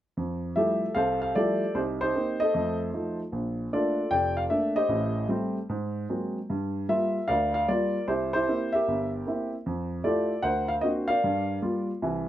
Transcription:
0.17 0.52 F2 medium
0.56 0.84 F3 soft
0.56 0.84 G3 soft
0.56 0.85 A3 soft
0.56 0.85 E4 soft
0.56 1.32 G4 medium
0.56 0.95 A4 soft
0.56 0.97 E5 medium
0.95 1.30 C2 medium
0.95 1.35 A4 medium
0.95 1.71 C5 medium
0.95 1.20 F5 medium
1.22 1.36 F5 medium
1.35 1.63 F3 soft
1.35 1.64 G3 soft
1.35 1.63 A3 soft
1.35 1.64 E4 soft
1.35 1.73 G4 medium
1.35 1.73 A4 medium
1.35 1.76 D5 medium
1.75 2.09 C2 medium
1.75 2.01 D#4 soft
1.75 2.01 G4 soft
1.75 1.81 C5 medium
2.01 2.15 D#4 soft
2.01 2.51 G4 medium
2.01 2.41 C5 medium
2.15 2.43 A#3 soft
2.15 2.43 C4 soft
2.15 2.43 D#4 soft
2.40 3.16 A4 soft
2.40 3.16 C5 soft
2.40 2.77 D#5 medium
2.54 2.88 F2 medium
2.54 2.88 A3 medium
2.94 3.21 F3 soft
2.94 3.21 A3 soft
2.94 3.21 D#4 soft
3.32 3.66 A#1 medium
3.73 4.00 A3 soft
3.73 4.00 A#3 soft
3.73 4.00 D4 soft
3.73 4.47 F4 soft
3.73 4.47 A4 soft
3.73 4.09 D5 medium
4.11 4.45 F1 medium
4.11 4.86 D5 medium
4.11 4.35 G5 medium
4.37 4.42 F5 medium
4.49 4.77 A3 soft
4.49 4.77 A#3 soft
4.49 4.78 D4 soft
4.49 4.74 E5 medium
4.76 5.52 G4 soft
4.76 5.52 C5 soft
4.76 5.25 D#5 medium
4.89 5.23 A1 medium
4.89 5.23 A2 medium
5.29 5.57 G3 soft
5.29 5.57 A3 soft
5.29 5.57 C4 medium
5.69 6.04 G#2 medium
6.09 6.37 F#3 soft
6.09 6.37 G#3 soft
6.09 6.37 A#3 soft
6.09 6.38 C4 soft
6.50 6.84 G2 medium
6.89 7.17 G3 soft
6.89 7.17 A#3 soft
6.89 7.18 F4 soft
6.89 7.27 A#4 medium
6.89 7.30 E5 medium
7.28 7.64 D2 medium
7.28 7.69 A#4 medium
7.28 7.67 D5 medium
7.28 7.53 F5 medium
7.54 7.67 F5 medium
7.68 7.96 G3 soft
7.68 7.96 A#3 soft
7.68 7.97 F4 soft
7.68 8.06 A#4 medium
7.68 8.05 D5 medium
8.08 8.42 C2 soft
8.08 8.33 E4 medium
8.08 8.34 G4 soft
8.08 8.32 C5 medium
8.33 8.47 E4 medium
8.33 8.73 G4 medium
8.33 8.74 C5 medium
8.48 8.75 A#3 soft
8.48 8.75 C4 soft
8.48 8.76 E4 soft
8.72 9.49 G4 medium
8.72 9.49 A#4 medium
8.72 9.09 E5 medium
8.88 9.21 G1 medium
9.27 9.54 A#3 soft
9.27 9.54 C4 soft
9.27 9.54 E4 soft
9.66 10.00 F2 medium
10.04 10.32 A3 soft
10.04 10.32 E4 soft
10.04 10.32 F4 soft
10.04 10.32 G4 soft
10.04 10.41 A4 soft
10.04 10.41 D5 medium
10.42 10.77 D2 medium
10.42 11.08 A#4 medium
10.42 11.19 C5 medium
10.42 10.67 F#5 medium
10.68 10.73 F5 medium
10.81 11.11 A#3 soft
10.81 11.11 C4 soft
10.81 11.11 D4 soft
10.81 11.11 F#4 soft
10.81 10.87 D#5 medium
11.08 11.85 A#4 medium
11.08 11.85 D5 medium
11.08 11.57 F5 medium
11.24 11.57 G2 medium
11.62 11.90 G3 soft
11.62 11.90 A#3 soft
11.62 11.90 F4 soft
12.02 12.29 C2 medium
12.02 12.29 E3 medium

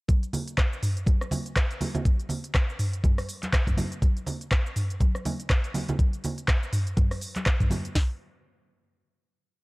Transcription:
0.08 kick loud
0.08 closed hi-hat medium
0.08 high conga medium
0.08 shaker medium
0.23 closed hi-hat soft
0.23 shaker soft
0.33 open hi-hat medium
0.33 low conga medium
0.33 shaker medium
0.48 closed hi-hat soft
0.48 shaker soft
0.58 kick loud
0.58 cross-stick loud
0.58 clap medium
0.58 closed hi-hat medium
0.58 shaker medium
0.73 shaker soft
0.83 mid tom medium
0.83 open hi-hat medium
0.83 shaker loud
0.97 closed hi-hat soft
0.97 shaker soft
1.06 kick loud
1.06 closed hi-hat medium
1.06 high conga loud
1.06 shaker medium
1.21 cross-stick medium
1.21 shaker soft
1.31 open hi-hat loud
1.31 high conga medium
1.31 low conga loud
1.31 shaker loud
1.46 closed hi-hat soft
1.46 shaker soft
1.56 kick loud
1.56 cross-stick loud
1.56 clap loud
1.56 closed hi-hat medium
1.56 shaker medium
1.71 closed hi-hat soft
1.71 shaker soft
1.81 open hi-hat medium
1.81 high conga medium
1.81 low conga loud
1.81 shaker loud
1.95 closed hi-hat soft
1.95 low conga loud
1.95 shaker soft
2.05 kick loud
2.05 closed hi-hat medium
2.05 high conga medium
2.05 shaker medium
2.20 closed hi-hat soft
2.20 shaker soft
2.29 open hi-hat medium
2.29 low conga loud
2.29 shaker loud
2.44 closed hi-hat soft
2.44 shaker soft
2.55 kick loud
2.55 cross-stick loud
2.55 clap loud
2.55 closed hi-hat medium
2.55 shaker medium
2.70 shaker soft
2.79 mid tom loud
2.79 open hi-hat medium
2.79 shaker loud
2.93 closed hi-hat soft
2.93 shaker soft
3.04 kick loud
3.04 closed hi-hat medium
3.04 mid tom medium
3.04 high conga loud
3.04 shaker medium
3.18 cross-stick medium
3.18 open hi-hat medium
3.18 shaker soft
3.29 open hi-hat medium
3.29 shaker loud
3.43 clap soft
3.43 closed hi-hat soft
3.43 high conga medium
3.43 shaker soft
3.53 kick loud
3.53 cross-stick loud
3.53 clap loud
3.53 closed hi-hat medium
3.53 shaker medium
3.67 kick medium
3.67 closed hi-hat soft
3.67 mid tom medium
3.67 high conga medium
3.67 shaker soft
3.77 open hi-hat medium
3.77 high conga medium
3.77 low conga loud
3.77 shaker medium
3.92 closed hi-hat soft
3.92 shaker soft
4.02 kick loud
4.02 closed hi-hat medium
4.02 high conga medium
4.02 shaker medium
4.17 closed hi-hat soft
4.17 shaker soft
4.26 open hi-hat medium
4.26 low conga loud
4.26 shaker loud
4.41 closed hi-hat soft
4.41 shaker soft
4.51 kick loud
4.51 cross-stick loud
4.51 clap loud
4.51 closed hi-hat medium
4.51 shaker medium
4.66 shaker soft
4.76 mid tom loud
4.76 open hi-hat medium
4.76 shaker loud
4.90 closed hi-hat soft
4.90 shaker soft
5.00 kick loud
5.00 closed hi-hat medium
5.00 high conga loud
5.00 shaker medium
5.15 cross-stick medium
5.15 shaker soft
5.25 open hi-hat loud
5.25 high conga medium
5.25 low conga loud
5.25 shaker loud
5.40 closed hi-hat soft
5.40 shaker soft
5.50 kick loud
5.50 cross-stick loud
5.50 clap loud
5.50 closed hi-hat medium
5.50 shaker medium
5.64 closed hi-hat soft
5.64 shaker soft
5.74 open hi-hat medium
5.74 high conga medium
5.74 low conga loud
5.74 shaker loud
5.88 closed hi-hat soft
5.88 low conga loud
5.88 shaker soft
5.99 kick loud
5.99 closed hi-hat medium
5.99 high conga medium
5.99 shaker medium
6.13 closed hi-hat soft
6.13 shaker soft
6.24 open hi-hat medium
6.24 low conga loud
6.24 shaker loud
6.38 closed hi-hat soft
6.38 shaker soft
6.48 kick loud
6.48 cross-stick loud
6.48 clap loud
6.48 closed hi-hat medium
6.48 shaker medium
6.63 shaker soft
6.73 mid tom loud
6.73 open hi-hat medium
6.73 shaker loud
6.87 closed hi-hat soft
6.87 shaker soft
6.97 kick loud
6.97 closed hi-hat medium
6.97 mid tom medium
6.97 high conga loud
6.97 shaker medium
7.11 cross-stick medium
7.11 open hi-hat soft
7.11 shaker soft
7.21 open hi-hat medium
7.21 shaker loud
7.36 clap soft
7.36 closed hi-hat soft
7.36 high conga medium
7.36 shaker soft
7.46 kick loud
7.46 cross-stick loud
7.46 clap loud
7.46 closed hi-hat medium
7.46 shaker medium
7.60 kick medium
7.60 closed hi-hat soft
7.60 mid tom medium
7.60 high conga medium
7.60 shaker soft
7.70 open hi-hat medium
7.70 high conga medium
7.70 low conga loud
7.70 shaker loud
7.85 closed hi-hat soft
7.85 shaker soft
7.95 kick loud
7.95 snare loud
7.95 open hi-hat medium

